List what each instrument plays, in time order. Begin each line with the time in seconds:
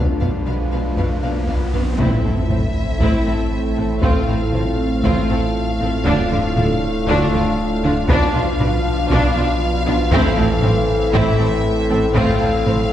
Already playing: sub bass B1, trombone section B2 F3, ambient pad F3 D4 F4 B4, french horn section D4 F4, riser
0.20 double bass section B1, cello section B2, viola section D4, violin section B4 F5, taiko low
0.46 double bass section B1, cello section B2, viola section D4, violin section B4 F5
0.72 double bass section B1, cello section B2, viola section D4, violin section B4 F5
0.97 double bass section B1, cello section B2, viola section D4, violin section B4 F5, taiko low
1.23 double bass section B1, cello section B2, viola section D4, violin section B4 F5
1.48 double bass section B1, cello section B2, viola section D4, violin section B4 F5, taiko
1.73 double bass section B1, cello section B2, viola section D4, violin section B4 F5, taiko low
1.99 double bass section A1, sub bass A1, cello section A2, trombone section A2 A3, ambient pad A3 C4 E4 A4, french horn section C4 E4, viola section C4, violin section E4 E5, taiko, sub drop
2.24 double bass section A1, cello section A2, viola section C4, violin section A4
2.49 double bass section A1, cello section A2, viola section C4, violin section C5, taiko low-mid
3.00 double bass section A1, cello section A2, viola section C4, violin section E4, taiko
3.26 double bass section A1, cello section A2, viola section C4, violin section A4
3.77 double bass section A1, cello section A2, viola section C4, violin section A4
4.02 double bass section A1, cello section A2, viola section C4, ambient pad F4, violin section F4 F5, french horn section F4, taiko
4.28 double bass section A1, cello section A2, viola section C4, violin section A4
4.53 double bass section A1, cello section A2, viola section C4, violin section C5, taiko low-mid
5.04 double bass section A1, cello section A2, viola section C4, violin section F4, taiko
5.29 double bass section A1, cello section A2, viola section C4, violin section A4
5.79 double bass section A1, cello section A2, viola section C4, violin section A4
6.05 sub bass D1, double bass section D2, trombone section A2 A3, cello section D3, viola section D4, ambient pad D4, french horn section D4, violin section D4, taiko
6.30 double bass section D2, cello section D3, viola section D4, violin section F4
6.56 double bass section D2, cello section D3, viola section D4, violin section A4, taiko low-mid
7.07 double bass section D2, cello section D3, viola section D4, violin section D4, taiko
7.33 double bass section D2, cello section D3, viola section D4, violin section F4
7.84 double bass section D2, cello section D3, viola section D4, violin section F4
8.08 sub bass B1, double bass section B1, trombone section B2 F3, cello section B2, ambient pad F3 B4, viola section D4, violin section D4 F5, french horn section F4, taiko
8.34 double bass section B1, cello section B2, viola section D4, violin section F4
8.60 double bass section B1, cello section B2, viola section D4, violin section B4, taiko low-mid
9.10 double bass section B1, cello section B2, violin section D4, viola section D4, taiko
9.35 double bass section B1, cello section B2, viola section D4, violin section F4
9.87 double bass section B1, cello section B2, viola section D4, violin section F4
10.12 sub bass A1, double bass section A1, cello section A2, trombone section A2 E3, ambient pad E3 A3 A4 C5, viola section C4, french horn section C4 A4, violin section E4, taiko
10.37 double bass section A1, cello section A2, viola section C4, violin section A4
10.62 double bass section A1, cello section A2, viola section C4, violin section C5, taiko low-mid
11.13 double bass section A1, cello section A2, viola section C4, violin section E4 E5, taiko
11.39 double bass section A1, cello section A2, viola section C4, violin section A4
11.89 double bass section A1, cello section A2, viola section C4, violin section A4
12.14 double bass section A1, cello section A2, ambient pad F3, trombone section F3, viola section C4, violin section F4 F5, taiko
12.39 double bass section A1, cello section A2, viola section C4, violin section A4
12.65 double bass section A1, cello section A2, viola section C4, violin section C5, taiko low-mid